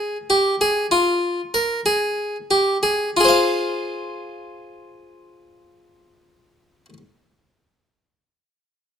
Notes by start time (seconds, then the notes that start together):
Already playing: G#4
0.30 G4
0.61 G#4
0.91 F4
1.54 A#4
1.86 G#4
2.51 G4
2.83 G#4
3.17 F4 G#4
3.25 C5 F5